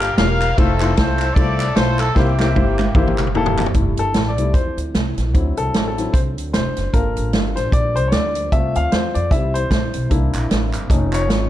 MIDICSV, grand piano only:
0, 0, Header, 1, 2, 480
1, 0, Start_track
1, 0, Key_signature, -1, "major"
1, 0, Tempo, 397088
1, 700, Time_signature, 4, 2, 24, 8
1, 13895, End_track
2, 0, Start_track
2, 0, Title_t, "Grand piano"
2, 0, Program_c, 0, 0
2, 204, Note_on_c, 0, 58, 80
2, 215, Note_on_c, 0, 65, 70
2, 223, Note_on_c, 0, 67, 66
2, 228, Note_on_c, 0, 70, 78
2, 528, Note_off_c, 0, 58, 0
2, 534, Note_off_c, 0, 65, 0
2, 538, Note_off_c, 0, 67, 0
2, 541, Note_off_c, 0, 70, 0
2, 695, Note_on_c, 0, 57, 94
2, 704, Note_on_c, 0, 64, 82
2, 709, Note_on_c, 0, 65, 89
2, 722, Note_on_c, 0, 72, 99
2, 863, Note_off_c, 0, 57, 0
2, 867, Note_off_c, 0, 64, 0
2, 870, Note_off_c, 0, 65, 0
2, 876, Note_off_c, 0, 72, 0
2, 969, Note_on_c, 0, 57, 72
2, 978, Note_on_c, 0, 64, 67
2, 986, Note_on_c, 0, 65, 67
2, 995, Note_on_c, 0, 72, 76
2, 1092, Note_off_c, 0, 57, 0
2, 1097, Note_off_c, 0, 64, 0
2, 1101, Note_off_c, 0, 65, 0
2, 1105, Note_off_c, 0, 72, 0
2, 1170, Note_on_c, 0, 57, 65
2, 1179, Note_on_c, 0, 64, 62
2, 1184, Note_on_c, 0, 65, 66
2, 1193, Note_on_c, 0, 72, 74
2, 1491, Note_off_c, 0, 57, 0
2, 1495, Note_off_c, 0, 64, 0
2, 1498, Note_off_c, 0, 65, 0
2, 1502, Note_off_c, 0, 72, 0
2, 1654, Note_on_c, 0, 57, 71
2, 1663, Note_on_c, 0, 64, 65
2, 1672, Note_on_c, 0, 65, 65
2, 1673, Note_on_c, 0, 72, 76
2, 1973, Note_off_c, 0, 57, 0
2, 1977, Note_off_c, 0, 64, 0
2, 1981, Note_off_c, 0, 65, 0
2, 1982, Note_off_c, 0, 72, 0
2, 2121, Note_on_c, 0, 57, 78
2, 2133, Note_on_c, 0, 64, 65
2, 2135, Note_on_c, 0, 65, 74
2, 2148, Note_on_c, 0, 72, 84
2, 2446, Note_off_c, 0, 57, 0
2, 2452, Note_off_c, 0, 64, 0
2, 2452, Note_off_c, 0, 65, 0
2, 2459, Note_off_c, 0, 72, 0
2, 2598, Note_on_c, 0, 58, 93
2, 2608, Note_on_c, 0, 64, 80
2, 2611, Note_on_c, 0, 48, 58
2, 2614, Note_on_c, 0, 67, 79
2, 2621, Note_on_c, 0, 72, 97
2, 2773, Note_off_c, 0, 58, 0
2, 2778, Note_off_c, 0, 64, 0
2, 2781, Note_off_c, 0, 67, 0
2, 2784, Note_off_c, 0, 72, 0
2, 2891, Note_on_c, 0, 58, 69
2, 2899, Note_on_c, 0, 64, 66
2, 2908, Note_on_c, 0, 72, 74
2, 2909, Note_on_c, 0, 67, 65
2, 3012, Note_off_c, 0, 58, 0
2, 3016, Note_off_c, 0, 64, 0
2, 3020, Note_off_c, 0, 72, 0
2, 3021, Note_off_c, 0, 67, 0
2, 3082, Note_on_c, 0, 58, 70
2, 3092, Note_on_c, 0, 64, 58
2, 3096, Note_on_c, 0, 67, 66
2, 3105, Note_on_c, 0, 72, 83
2, 3326, Note_off_c, 0, 48, 0
2, 3406, Note_off_c, 0, 58, 0
2, 3411, Note_off_c, 0, 64, 0
2, 3413, Note_off_c, 0, 67, 0
2, 3417, Note_off_c, 0, 72, 0
2, 3575, Note_on_c, 0, 58, 83
2, 3577, Note_on_c, 0, 64, 75
2, 3584, Note_on_c, 0, 67, 83
2, 3599, Note_on_c, 0, 72, 91
2, 3892, Note_off_c, 0, 58, 0
2, 3893, Note_off_c, 0, 64, 0
2, 3897, Note_off_c, 0, 67, 0
2, 3904, Note_off_c, 0, 72, 0
2, 4050, Note_on_c, 0, 58, 88
2, 4057, Note_on_c, 0, 64, 83
2, 4068, Note_on_c, 0, 67, 80
2, 4073, Note_on_c, 0, 69, 100
2, 4370, Note_off_c, 0, 58, 0
2, 4373, Note_off_c, 0, 64, 0
2, 4379, Note_off_c, 0, 67, 0
2, 4381, Note_off_c, 0, 69, 0
2, 4528, Note_on_c, 0, 55, 49
2, 4531, Note_on_c, 0, 57, 44
2, 4540, Note_on_c, 0, 64, 51
2, 4826, Note_on_c, 0, 69, 94
2, 4874, Note_off_c, 0, 55, 0
2, 4876, Note_off_c, 0, 57, 0
2, 4881, Note_off_c, 0, 64, 0
2, 5180, Note_on_c, 0, 74, 84
2, 5192, Note_off_c, 0, 69, 0
2, 5294, Note_on_c, 0, 55, 41
2, 5301, Note_on_c, 0, 57, 41
2, 5303, Note_on_c, 0, 64, 47
2, 5475, Note_off_c, 0, 55, 0
2, 5477, Note_off_c, 0, 74, 0
2, 5479, Note_off_c, 0, 57, 0
2, 5480, Note_off_c, 0, 64, 0
2, 5486, Note_on_c, 0, 72, 78
2, 5752, Note_off_c, 0, 72, 0
2, 6453, Note_on_c, 0, 54, 50
2, 6458, Note_on_c, 0, 60, 45
2, 6466, Note_on_c, 0, 64, 51
2, 6740, Note_on_c, 0, 69, 88
2, 7086, Note_off_c, 0, 69, 0
2, 7104, Note_on_c, 0, 69, 71
2, 7179, Note_off_c, 0, 54, 0
2, 7182, Note_off_c, 0, 60, 0
2, 7186, Note_off_c, 0, 64, 0
2, 7225, Note_on_c, 0, 54, 44
2, 7232, Note_on_c, 0, 60, 40
2, 7238, Note_on_c, 0, 64, 48
2, 7400, Note_off_c, 0, 69, 0
2, 7403, Note_off_c, 0, 54, 0
2, 7407, Note_off_c, 0, 60, 0
2, 7410, Note_off_c, 0, 64, 0
2, 7412, Note_on_c, 0, 72, 79
2, 7476, Note_off_c, 0, 72, 0
2, 7898, Note_on_c, 0, 72, 84
2, 8381, Note_on_c, 0, 69, 50
2, 8383, Note_on_c, 0, 70, 77
2, 8391, Note_on_c, 0, 58, 46
2, 8395, Note_off_c, 0, 72, 0
2, 8399, Note_on_c, 0, 65, 58
2, 8829, Note_off_c, 0, 70, 0
2, 9104, Note_off_c, 0, 69, 0
2, 9109, Note_off_c, 0, 58, 0
2, 9114, Note_off_c, 0, 65, 0
2, 9134, Note_on_c, 0, 72, 82
2, 9324, Note_off_c, 0, 72, 0
2, 9344, Note_on_c, 0, 74, 94
2, 9617, Note_on_c, 0, 72, 97
2, 9632, Note_off_c, 0, 74, 0
2, 9740, Note_off_c, 0, 72, 0
2, 9766, Note_on_c, 0, 73, 79
2, 9818, Note_on_c, 0, 74, 97
2, 9829, Note_off_c, 0, 73, 0
2, 10303, Note_on_c, 0, 76, 94
2, 10306, Note_on_c, 0, 57, 51
2, 10310, Note_on_c, 0, 60, 45
2, 10315, Note_off_c, 0, 74, 0
2, 10320, Note_on_c, 0, 65, 60
2, 10564, Note_off_c, 0, 76, 0
2, 10590, Note_on_c, 0, 77, 108
2, 10780, Note_on_c, 0, 72, 87
2, 10792, Note_off_c, 0, 77, 0
2, 11027, Note_off_c, 0, 57, 0
2, 11029, Note_off_c, 0, 60, 0
2, 11034, Note_off_c, 0, 65, 0
2, 11053, Note_on_c, 0, 74, 85
2, 11070, Note_off_c, 0, 72, 0
2, 11243, Note_off_c, 0, 74, 0
2, 11253, Note_on_c, 0, 55, 53
2, 11258, Note_on_c, 0, 76, 93
2, 11260, Note_on_c, 0, 60, 47
2, 11271, Note_on_c, 0, 64, 52
2, 11521, Note_off_c, 0, 76, 0
2, 11532, Note_on_c, 0, 72, 100
2, 11599, Note_off_c, 0, 55, 0
2, 11603, Note_off_c, 0, 60, 0
2, 11609, Note_off_c, 0, 64, 0
2, 11714, Note_off_c, 0, 72, 0
2, 11732, Note_on_c, 0, 72, 81
2, 12183, Note_off_c, 0, 72, 0
2, 12202, Note_on_c, 0, 58, 50
2, 12212, Note_on_c, 0, 62, 48
2, 12219, Note_on_c, 0, 64, 59
2, 13123, Note_off_c, 0, 58, 0
2, 13128, Note_off_c, 0, 62, 0
2, 13132, Note_off_c, 0, 64, 0
2, 13173, Note_on_c, 0, 57, 50
2, 13182, Note_on_c, 0, 61, 49
2, 13185, Note_on_c, 0, 63, 61
2, 13465, Note_on_c, 0, 73, 92
2, 13895, Note_off_c, 0, 57, 0
2, 13895, Note_off_c, 0, 61, 0
2, 13895, Note_off_c, 0, 63, 0
2, 13895, Note_off_c, 0, 73, 0
2, 13895, End_track
0, 0, End_of_file